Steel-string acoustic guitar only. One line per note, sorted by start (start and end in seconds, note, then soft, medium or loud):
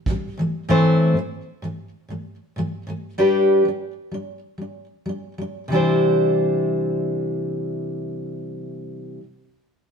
0.07 0.32 C3 medium
0.07 0.32 E3 medium
0.07 0.33 G3 medium
0.37 0.63 A2 medium
0.37 0.63 E3 medium
0.37 0.64 A3 medium
0.69 1.14 A2 medium
0.69 1.16 E3 medium
0.69 1.16 A3 medium
0.69 1.16 C4 medium
0.69 1.17 E4 medium
0.69 1.17 C5 medium
1.15 1.40 A2 soft
1.15 1.41 E3 soft
1.15 1.42 A3 medium
1.62 1.87 A2 medium
1.62 1.88 E3 medium
1.62 1.89 A3 medium
2.08 2.34 A2 soft
2.08 2.35 E3 soft
2.08 2.36 A3 soft
2.56 2.81 A2 medium
2.56 2.82 E3 medium
2.56 2.83 A3 medium
2.87 3.12 A2 medium
2.87 3.13 E3 medium
2.87 3.14 A3 medium
3.18 3.64 G3 medium
3.18 3.66 D4 medium
3.18 3.66 G4 medium
3.18 3.67 B4 medium
3.65 3.91 G3 soft
3.65 3.92 D4 soft
4.12 4.37 G3 soft
4.12 4.39 D4 medium
4.58 4.84 G3 soft
4.58 4.86 D4 soft
5.06 5.31 G3 medium
5.06 5.33 D4 medium
5.38 5.63 G3 soft
5.38 5.65 D4 medium
5.68 9.18 C3 medium
5.68 9.20 E3 medium
5.68 9.22 G3 medium
5.73 9.23 D4 medium
5.73 9.24 E4 medium
5.73 9.25 C5 medium